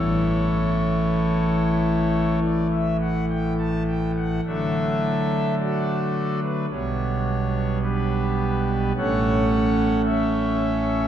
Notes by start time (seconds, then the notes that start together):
Already playing: A1 A2 E3 A3 E4 A4 C#5
2.43 D5
2.72 E5
3.01 F#5
3.30 G5
3.59 A5
3.88 G5
4.17 F#5
4.46 D3 F#3 A3 D4 A4 E5
5.59 F#4 A4 D5
6.42 B4
6.71 B1 B2 G3 B3 D4 C#5
7.82 D4 G4 B4
8.97 A1 A2 A3 C#4 A4 C#5 F#5
10.05 A4 C#5 E5